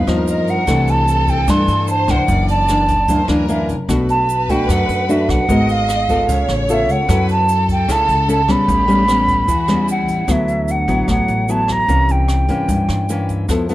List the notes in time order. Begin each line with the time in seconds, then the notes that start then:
Already playing: G2
0.07 D#2 F3 B3 D#4 A#4, cross-stick, closed hi-hat, shaker
0.27 D#5, closed hi-hat, shaker
0.47 G2 F#5, closed hi-hat, shaker
0.67 C2 C3 E3 A3 D4 A4, kick, cross-stick, closed hi-hat, shaker
0.87 A5, closed hi-hat, shaker
1.08 closed hi-hat, shaker
1.28 G5, kick, closed hi-hat, shaker
1.48 G2 E3 A3 D4 C6, kick, cross-stick, closed hi-hat, shaker
1.68 G2, closed hi-hat, shaker
1.88 C5 A5, closed hi-hat, shaker
2.08 C2 E3 A#3 D4 F#5, kick, cross-stick, closed hi-hat, shaker
2.28 F#1 F#2 D5, kick, closed hi-hat, shaker
2.48 A5, closed hi-hat, shaker
2.68 E3 A#3 D4, cross-stick, closed hi-hat, shaker
2.88 kick, closed hi-hat, shaker
3.08 D2 F#2 E3 A#3 D4 C5, kick, closed hi-hat, shaker
3.28 D2 E3 A#3 D4 A#4, cross-stick, closed hi-hat, shaker
3.48 E3 A#3 D4 E5, closed hi-hat, shaker
3.69 F#1, closed hi-hat, shaker
3.88 B1 B2 A3 D4 F#4 B4, kick, cross-stick, closed hi-hat, shaker
4.09 A5, closed hi-hat, shaker
4.29 closed hi-hat, shaker
4.49 A3 D4 F#4 G5, kick, closed hi-hat, shaker
4.69 F#2 F#5, kick, cross-stick, closed hi-hat, shaker
4.89 F#2, closed hi-hat, shaker
5.09 A3 D4 F#4 E5, closed hi-hat, shaker
5.29 B1 F#5, kick, cross-stick, closed hi-hat, shaker
5.49 G#1 G#3 B3 F#4 A#4 D#5, kick, closed hi-hat, shaker
5.69 F5, closed hi-hat, shaker
5.89 cross-stick, closed hi-hat, shaker
6.09 B3 F4 A4, kick, closed hi-hat, shaker
6.28 C#2 C#3 C#5, kick, closed hi-hat, shaker
6.48 A1, cross-stick, closed hi-hat, shaker
6.68 B3 F4 A4 E5, closed hi-hat, shaker
6.89 C#2 F#5, closed hi-hat, shaker
7.09 F#2 F#3 C#4 E4 A4 B4, kick, cross-stick, closed hi-hat, shaker
7.28 A5, closed hi-hat, shaker
7.48 A4, closed hi-hat, shaker
7.68 G5, kick, closed hi-hat, shaker
7.88 C#2 C#3 C#4 E4 A4 A5, kick, cross-stick, closed hi-hat, shaker
8.08 C#2, closed hi-hat, shaker
8.28 C#4 E4 A4 A5, closed hi-hat, shaker
8.48 B1 G3 B3 C#4 B5, kick, cross-stick, closed hi-hat, shaker
8.68 A1 A2 G4, kick, closed hi-hat, shaker
8.88 G3 B3 C#4, closed hi-hat, shaker
9.08 G3 B3 C#4, cross-stick, closed hi-hat, shaker
9.28 kick, closed hi-hat, shaker
9.48 E2 E3 F#4, kick, closed hi-hat, shaker
9.68 E2 G3 B3 C#4, cross-stick, closed hi-hat, shaker
9.88 E4 F#5, closed hi-hat, shaker
10.08 A1, closed hi-hat, shaker
10.28 D2 D3 F#3 B3 E4 E5, kick, cross-stick, closed hi-hat, shaker
10.48 closed hi-hat, shaker
10.68 F#5, closed hi-hat, shaker
10.88 A1 F#3 B3 E4, kick, closed hi-hat, shaker
11.08 A1 A2 F#5, kick, cross-stick, closed hi-hat, shaker
11.28 A1, closed hi-hat, shaker
11.48 F#3 B3 E4 A5, closed hi-hat, shaker
11.68 A#5, kick, cross-stick, closed hi-hat, shaker
11.88 C2 C3 E3 A#3 C#4, kick, closed hi-hat, shaker
12.08 G5, closed hi-hat, shaker
12.28 cross-stick, closed hi-hat, shaker
12.48 G2 E3 A#3 C#4, kick, closed hi-hat, shaker
12.68 G2, kick, closed hi-hat, shaker
12.89 G2, cross-stick, closed hi-hat, shaker
13.09 E3 A#3 C#4, closed hi-hat, shaker
13.29 kick, closed hi-hat, shaker
13.49 F2 F3 B3 E4 A4, kick, cross-stick, closed hi-hat, shaker
13.69 B3 E4 A4, closed hi-hat, shaker